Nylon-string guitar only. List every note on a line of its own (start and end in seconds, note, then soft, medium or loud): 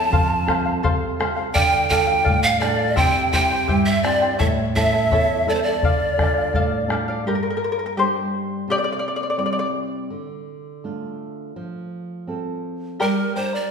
0.10 0.80 F2 medium
0.47 1.04 C4 soft
0.47 1.04 F4 soft
0.47 1.04 A4 medium
0.84 1.52 C3 medium
1.19 1.47 C4 soft
1.19 1.47 F4 soft
1.19 1.48 A4 medium
1.55 2.24 D3 medium
1.90 2.47 D4 soft
1.90 2.47 F4 soft
1.90 2.48 A4 medium
2.29 2.96 A2 medium
2.62 2.90 D4 medium
2.62 2.90 F4 soft
2.62 2.91 A4 medium
2.97 3.66 C3 medium
3.33 3.90 C4 soft
3.33 3.90 E4 soft
3.33 3.90 G4 medium
3.69 4.38 G2 medium
4.04 4.32 C4 soft
4.04 4.32 E4 soft
4.04 4.33 G4 medium
4.41 5.10 A2 medium
4.75 5.32 C#4 soft
4.75 5.33 E4 soft
4.75 5.33 A4 soft
5.11 5.80 E2 medium
5.46 5.75 C#4 medium
5.46 5.76 E4 soft
5.46 5.76 A4 medium
5.82 6.52 D3 medium
6.17 6.75 D4 soft
6.17 6.76 F4 soft
6.17 6.75 A4 medium
6.53 7.23 A2 medium
6.88 7.18 D4 medium
6.88 7.18 F4 soft
6.88 7.18 A4 medium
7.24 8.65 G2 medium
7.97 8.67 G3 soft
7.97 8.67 A#3 soft
7.97 8.67 D4 soft
8.68 10.08 C3 medium
9.38 10.09 G3 soft
9.38 10.09 C4 soft
9.38 10.10 E4 soft
10.10 11.52 D3 medium
10.84 11.54 A3 soft
10.84 11.55 D4 soft
10.84 11.55 F4 soft
11.56 12.97 F3 medium
12.27 12.98 C4 soft
12.27 12.99 F4 soft
12.27 12.99 A4 soft
13.01 13.71 G3 medium
13.36 13.71 D4 soft
13.36 13.71 G4 soft
13.36 13.71 A#4 soft